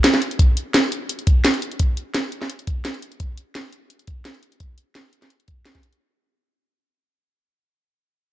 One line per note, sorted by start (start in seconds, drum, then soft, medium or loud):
0.04 snare loud
0.04 closed hi-hat medium
0.14 snare soft
0.14 closed hi-hat soft
0.22 closed hi-hat medium
0.31 closed hi-hat soft
0.39 kick loud
0.39 closed hi-hat medium
0.57 closed hi-hat medium
0.74 snare loud
0.74 closed hi-hat medium
0.92 closed hi-hat medium
1.09 closed hi-hat medium
1.19 closed hi-hat soft
1.27 kick loud
1.27 closed hi-hat medium
1.45 snare loud
1.45 closed hi-hat medium
1.54 closed hi-hat soft
1.62 closed hi-hat medium
1.72 closed hi-hat soft
1.79 kick loud
1.79 closed hi-hat medium
1.97 closed hi-hat medium
2.15 snare loud
2.15 closed hi-hat medium
2.32 closed hi-hat medium
2.42 snare soft
2.50 closed hi-hat medium
2.59 closed hi-hat soft
2.67 kick medium
2.67 closed hi-hat medium
2.85 snare loud
2.85 closed hi-hat medium
2.94 closed hi-hat soft
3.02 closed hi-hat medium
3.12 closed hi-hat soft
3.20 kick loud
3.20 closed hi-hat medium
3.37 closed hi-hat medium
3.55 snare loud
3.55 closed hi-hat medium
3.73 closed hi-hat medium
3.90 closed hi-hat medium
3.99 closed hi-hat soft
4.07 kick loud
4.07 closed hi-hat medium
4.25 snare loud
4.25 closed hi-hat medium
4.34 closed hi-hat soft
4.43 closed hi-hat medium
4.52 closed hi-hat soft
4.60 kick loud
4.60 closed hi-hat medium
4.78 closed hi-hat medium
4.95 snare loud
4.95 closed hi-hat medium
5.13 closed hi-hat medium
5.22 snare soft
5.22 closed hi-hat soft
5.30 closed hi-hat medium
5.40 closed hi-hat soft
5.48 kick medium
5.48 closed hi-hat medium
5.65 snare loud
5.65 closed hi-hat medium
5.75 kick medium
5.75 snare soft
5.75 closed hi-hat soft
5.83 closed hi-hat medium
5.93 closed hi-hat soft